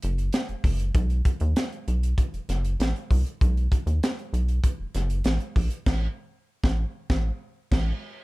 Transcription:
0.02 0.30 F#1 loud
0.02 closed hi-hat medium
0.18 closed hi-hat soft
0.33 snare loud
0.33 closed hi-hat medium
0.49 0.55 F#1 medium
0.49 closed hi-hat soft
0.64 0.91 F#1 medium
0.64 kick medium
0.64 open hi-hat medium
0.80 closed hi-hat medium
0.95 1.21 B1 loud
0.95 kick loud
0.95 closed hi-hat medium
1.10 closed hi-hat soft
1.25 kick loud
1.25 closed hi-hat medium
1.40 1.54 D#2 loud
1.40 closed hi-hat soft
1.56 snare loud
1.56 closed hi-hat medium
1.72 closed hi-hat soft
1.88 2.14 B1 medium
1.88 closed hi-hat medium
2.03 closed hi-hat medium
2.18 kick medium
2.18 closed hi-hat medium
2.33 2.39 F#1 soft
2.33 closed hi-hat soft
2.49 2.75 F#1 loud
2.49 snare soft
2.49 closed hi-hat medium
2.65 closed hi-hat soft
2.80 2.93 A1 medium
2.80 snare loud
2.80 closed hi-hat medium
2.96 closed hi-hat soft
3.11 3.24 C2 medium
3.11 kick medium
3.11 open hi-hat medium
3.27 closed hi-hat soft
3.41 3.68 B1 loud
3.41 kick loud
3.41 closed hi-hat medium
3.57 closed hi-hat soft
3.72 kick loud
3.72 closed hi-hat medium
3.86 4.00 D#2 medium
3.86 closed hi-hat soft
4.03 snare loud
4.03 closed hi-hat medium
4.19 closed hi-hat soft
4.33 4.60 B1 medium
4.33 closed hi-hat medium
4.48 closed hi-hat soft
4.64 kick medium
4.64 closed hi-hat medium
4.80 4.86 F#1 soft
4.95 5.21 F#1 loud
4.95 snare soft
4.95 closed hi-hat medium
5.10 closed hi-hat medium
5.24 5.38 A1 loud
5.24 snare loud
5.24 closed hi-hat medium
5.40 closed hi-hat soft
5.56 5.69 A#1 medium
5.56 kick medium
5.56 open hi-hat medium
5.70 closed hi-hat soft
5.86 6.07 A1 loud
5.86 kick loud
5.86 snare loud
5.86 crash medium
6.63 6.84 A1 loud
6.63 kick loud
6.63 snare loud
7.10 7.31 A1 medium
7.10 kick loud
7.10 snare loud
7.71 7.92 A1 loud
7.71 kick loud
7.71 snare loud
7.71 crash medium

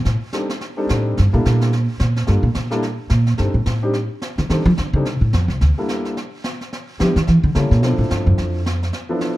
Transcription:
0.05 0.16 A2 medium
0.05 brush sweep soft
0.05 snare soft
0.33 0.48 G3 medium
0.33 0.48 C4 soft
0.33 0.48 D4 soft
0.33 0.48 D#4 soft
0.33 0.48 A4 medium
0.33 snare medium
0.49 snare soft
0.61 brush sweep soft
0.61 snare soft
0.77 1.14 G3 medium
0.77 1.14 C4 medium
0.77 1.14 D4 medium
0.77 1.14 D#4 medium
0.77 1.15 A4 medium
0.89 1.15 A2 medium
0.89 snare medium
1.17 1.33 G2 medium
1.17 brush sweep soft
1.17 snare soft
1.33 1.44 A#2 medium
1.33 1.70 G3 medium
1.33 1.70 A#3 medium
1.33 1.70 D4 medium
1.33 1.70 E4 medium
1.33 1.70 A4 medium
1.45 1.86 A#2 medium
1.45 snare medium
1.61 snare soft
1.73 brush sweep soft
1.73 snare soft
2.00 2.26 A#2 medium
2.00 snare medium
2.16 snare soft
2.27 2.42 G2 medium
2.27 2.42 G3 medium
2.27 2.42 A#3 soft
2.27 2.42 D4 soft
2.27 2.42 F4 soft
2.27 2.43 A4 medium
2.27 brush sweep medium
2.27 snare soft
2.43 2.54 A#2 medium
2.55 2.97 A#2 medium
2.55 snare medium
2.71 2.81 G3 medium
2.71 2.82 A#3 medium
2.71 2.82 D4 medium
2.71 2.82 E4 medium
2.71 2.82 A4 medium
2.71 snare soft
2.82 brush sweep soft
2.82 snare soft
3.10 3.37 A#2 medium
3.10 snare medium
3.27 snare soft
3.38 3.54 G2 medium
3.38 3.53 G3 soft
3.38 3.53 C4 soft
3.38 3.53 D4 soft
3.38 3.54 D#4 soft
3.38 3.54 A4 medium
3.38 brush sweep soft
3.38 snare soft
3.54 3.66 A2 medium
3.66 4.07 A2 medium
3.66 snare medium
3.82 3.93 G3 medium
3.82 3.93 C4 medium
3.82 3.93 D4 medium
3.82 3.93 D#4 medium
3.82 3.93 G4 medium
3.93 brush sweep soft
3.93 snare soft
4.22 snare medium
4.38 4.49 D3 loud
4.38 snare soft
4.49 4.65 D#3 medium
4.49 4.64 G3 medium
4.49 4.64 C4 soft
4.49 4.65 D4 soft
4.49 4.65 D#4 soft
4.49 4.65 A4 medium
4.49 brush sweep soft
4.49 snare soft
4.66 4.77 F3 loud
4.77 4.93 D3 medium
4.77 snare medium
4.93 5.06 C#3 medium
4.93 5.04 G3 medium
4.93 5.04 C4 medium
4.93 5.05 D4 soft
4.93 5.05 D#4 medium
4.93 5.05 A4 medium
5.05 5.21 C3 medium
5.05 brush sweep soft
5.05 snare soft
5.21 5.32 A2 medium
5.33 5.48 F2 medium
5.33 snare medium
5.48 5.60 C2 medium
5.48 snare soft
5.61 5.71 D2 medium
5.61 brush sweep medium
5.61 snare soft
5.78 6.14 G3 medium
5.78 6.14 A#3 soft
5.78 6.15 D4 soft
5.78 6.14 E4 soft
5.78 6.15 A4 medium
5.89 snare medium
6.05 snare soft
6.17 brush sweep soft
6.17 snare soft
6.44 snare medium
6.61 snare soft
6.73 brush sweep soft
6.73 snare soft
6.99 7.15 F3 medium
6.99 7.14 G3 soft
6.99 7.14 B3 soft
6.99 7.14 D4 soft
6.99 7.14 E4 soft
6.99 7.14 G4 medium
6.99 snare medium
7.16 7.27 D#3 medium
7.16 snare soft
7.27 7.43 E3 medium
7.27 brush sweep soft
7.27 snare soft
7.44 7.54 D3 medium
7.55 7.71 C#3 medium
7.55 7.82 G3 soft
7.55 7.82 A#3 soft
7.55 7.82 C#4 soft
7.55 7.82 E4 soft
7.55 7.82 A4 medium
7.55 snare medium
7.71 7.83 A#2 medium
7.71 snare soft
7.82 7.98 B2 medium
7.82 8.58 F3 medium
7.82 8.59 C4 medium
7.82 8.59 D4 medium
7.82 8.59 E4 soft
7.82 8.59 A4 medium
7.82 brush sweep medium
7.82 snare medium
7.98 8.09 A2 medium
8.11 8.26 G2 medium
8.11 snare medium
8.26 8.37 F#2 medium
8.38 8.89 F2 medium
8.38 brush sweep soft
8.38 snare soft
8.66 snare medium
8.83 snare soft
8.93 brush sweep soft
8.93 snare soft
9.09 9.37 F3 medium
9.09 9.37 B3 medium
9.09 9.37 D4 medium
9.09 9.37 E4 medium
9.09 9.37 A4 medium
9.21 snare medium

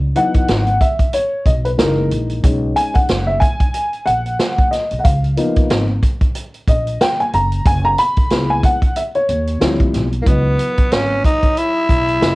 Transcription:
0.00 0.11 C#2 loud
0.15 0.61 E3 medium
0.15 0.61 F#3 soft
0.15 0.61 B3 medium
0.15 0.61 D#4 medium
0.15 0.83 F#5 loud
0.15 closed hi-hat medium
0.34 kick medium
0.34 closed hi-hat soft
0.48 0.76 G#1 medium
0.48 snare loud
0.48 closed hi-hat medium
0.67 closed hi-hat soft
0.81 1.11 E5 medium
0.81 kick medium
0.81 closed hi-hat medium
0.99 kick medium
0.99 closed hi-hat soft
1.13 1.47 C#5 medium
1.13 closed hi-hat medium
1.46 1.74 B1 loud
1.46 1.51 D#5 medium
1.46 kick medium
1.46 closed hi-hat medium
1.65 1.70 B4 medium
1.65 closed hi-hat soft
1.78 2.07 F#1 loud
1.78 2.40 E3 medium
1.78 2.40 G#3 medium
1.78 2.41 A#3 medium
1.78 2.41 D#4 medium
1.78 2.09 A#4 medium
1.78 snare loud
1.78 closed hi-hat loud
2.11 2.39 A#1 medium
2.11 closed hi-hat medium
2.30 closed hi-hat soft
2.43 2.72 B1 loud
2.43 3.37 G#3 medium
2.43 3.38 C#4 soft
2.43 3.38 D#4 medium
2.43 kick loud
2.43 closed hi-hat medium
2.76 2.94 G#5 loud
2.76 closed hi-hat medium
2.94 3.28 F#5 medium
2.94 kick medium
2.94 closed hi-hat soft
3.09 3.37 F#1 medium
3.09 snare loud
3.09 closed hi-hat medium
3.27 3.42 E5 medium
3.40 4.08 G#5 loud
3.40 kick loud
3.40 closed hi-hat medium
3.60 kick medium
3.60 closed hi-hat soft
3.74 closed hi-hat medium
3.93 closed hi-hat soft
4.06 4.35 A#1 medium
4.06 4.68 F#5 loud
4.06 closed hi-hat medium
4.26 closed hi-hat soft
4.39 snare medium
4.39 closed hi-hat medium
4.58 kick medium
4.58 closed hi-hat soft
4.71 4.99 D#5 medium
4.71 snare soft
4.71 closed hi-hat medium
4.91 5.03 B1 medium
4.91 closed hi-hat soft
4.99 5.05 F#5 medium
5.04 5.33 C#2 loud
5.04 5.66 F5 medium
5.04 kick loud
5.04 closed hi-hat medium
5.24 closed hi-hat soft
5.37 5.82 F3 medium
5.37 5.83 A#3 medium
5.37 5.83 B3 medium
5.37 5.83 D#4 medium
5.37 closed hi-hat medium
5.56 kick medium
5.56 closed hi-hat soft
5.70 5.98 G#1 medium
5.70 snare loud
5.70 closed hi-hat medium
6.03 kick medium
6.03 closed hi-hat medium
6.21 kick medium
6.21 closed hi-hat soft
6.35 closed hi-hat medium
6.54 closed hi-hat soft
6.68 6.95 A#1 medium
6.68 7.02 D#5 medium
6.68 kick medium
6.68 closed hi-hat medium
6.87 closed hi-hat soft
7.01 7.20 G5 medium
7.01 snare loud
7.01 closed hi-hat loud
7.20 7.33 G#5 medium
7.20 closed hi-hat soft
7.33 7.61 F#1 medium
7.33 7.67 A#5 loud
7.33 closed hi-hat medium
7.52 closed hi-hat soft
7.65 7.93 F#1 loud
7.65 7.86 G#5 loud
7.65 kick loud
7.65 closed hi-hat medium
7.85 7.99 A#5 loud
7.98 8.51 B5 loud
7.98 closed hi-hat medium
8.17 kick medium
8.17 closed hi-hat soft
8.30 8.59 C#2 medium
8.30 8.76 G#3 medium
8.30 8.76 B3 soft
8.30 8.77 E4 medium
8.30 snare loud
8.30 closed hi-hat medium
8.50 8.63 G#5 loud
8.63 8.98 F#5 loud
8.63 kick medium
8.63 closed hi-hat medium
8.82 kick medium
8.82 closed hi-hat soft
8.96 9.01 E5 medium
8.96 closed hi-hat medium
9.15 9.76 C#5 medium
9.15 closed hi-hat soft
9.29 9.57 D#2 loud
9.29 closed hi-hat medium
9.47 closed hi-hat soft
9.60 9.95 D2 medium
9.60 10.06 F3 medium
9.60 10.06 G3 medium
9.60 10.06 C4 medium
9.60 10.07 E4 medium
9.60 snare loud
9.60 closed hi-hat medium
9.80 kick medium
9.80 closed hi-hat soft
9.94 10.22 B1 medium
9.94 snare soft
9.94 closed hi-hat medium
10.12 closed hi-hat soft
10.22 12.16 E3 medium
10.22 12.17 F#3 soft
10.22 10.28 A#3 medium
10.26 10.54 C#2 loud
10.26 10.94 B3 medium
10.26 12.19 B3 medium
10.26 12.20 D#5 medium
10.26 kick loud
10.26 closed hi-hat medium
10.59 closed hi-hat medium
10.78 kick medium
10.78 closed hi-hat soft
10.92 11.20 G#1 medium
10.92 11.24 C#4 medium
10.92 snare loud
10.92 closed hi-hat medium
11.24 11.59 D#4 medium
11.24 kick medium
11.24 closed hi-hat medium
11.43 kick medium
11.43 closed hi-hat soft
11.57 12.35 E4 loud
11.57 closed hi-hat medium
11.89 12.17 B1 medium
11.89 kick medium
11.89 closed hi-hat medium
12.08 closed hi-hat soft
12.20 12.35 F#1 medium
12.20 12.35 E3 medium
12.20 12.35 G#3 medium
12.20 12.35 A#3 medium
12.20 12.35 D#5 medium
12.20 snare loud
12.20 closed hi-hat medium

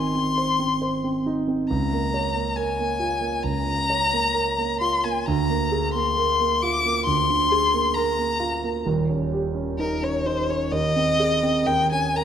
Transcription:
0.00 1.71 G#1 medium
0.00 1.71 G#2 medium
0.00 0.28 D#3 soft
0.00 0.15 C4 soft
0.00 1.26 D#4 soft
0.00 0.38 C5 soft
0.00 1.25 C6 loud
0.15 0.50 C4 soft
0.38 0.72 C5 soft
0.59 0.94 C4 soft
0.82 1.17 C5 medium
1.04 1.39 C4 soft
1.26 1.61 D#4 medium
1.48 1.70 C4 soft
1.69 3.40 C#2 medium
1.69 2.57 A#5 medium
1.93 2.27 A#3 medium
2.14 2.48 C#5 medium
2.35 2.70 A#3 medium
2.56 2.91 A#4 medium
2.56 3.44 G#5 loud
2.79 3.13 A#3 medium
3.00 3.35 F4 medium
3.21 3.57 A#3 medium
3.43 5.22 C#2 medium
3.43 4.80 A#5 loud
3.66 4.02 C#3 medium
3.90 4.26 C#5 medium
4.13 4.49 A#3 medium
4.34 4.71 A#4 medium
4.58 4.95 A#3 medium
4.81 5.17 F4 medium
4.81 5.06 C6 loud
5.04 5.27 A#3 medium
5.04 5.27 G#5 medium
5.26 7.03 D2 medium
5.26 5.94 A#5 loud
5.50 5.85 A#3 medium
5.72 6.08 G#4 medium
5.94 6.31 A#3 medium
5.94 6.63 C6 loud
6.17 6.53 A#4 medium
6.40 6.76 A#3 medium
6.62 6.98 F4 medium
6.62 7.05 D6 loud
6.85 7.20 A#3 medium
7.06 8.82 D2 medium
7.06 7.95 C6 loud
7.30 7.64 D3 medium
7.52 7.86 G#4 medium
7.74 8.08 A#3 medium
7.94 8.31 A#4 medium
7.94 8.85 A#5 loud
8.18 8.54 A#3 medium
8.40 8.76 F4 medium
8.64 8.86 A#3 medium
8.86 10.68 D#1 medium
8.86 10.68 D#2 medium
9.10 9.46 C#4 medium
9.33 9.69 G4 medium
9.55 9.92 C#4 medium
9.78 10.16 D#4 medium
9.78 10.05 A#4 medium
10.02 10.39 C#4 medium
10.02 10.27 C#5 medium
10.26 10.63 D#4 medium
10.26 10.51 C5 loud
10.49 10.72 C#4 medium
10.49 10.73 C#5 medium
10.71 11.64 D#2 medium
10.71 11.68 D#5 loud
10.96 11.33 C4 medium
11.20 11.57 G#4 medium
11.43 11.67 C4 medium
11.66 12.24 D#2 medium
11.66 11.91 G5 loud
11.92 12.24 C#4 medium
11.92 12.17 G#5 medium
12.16 12.24 A#4 medium
12.16 12.24 A#5 loud

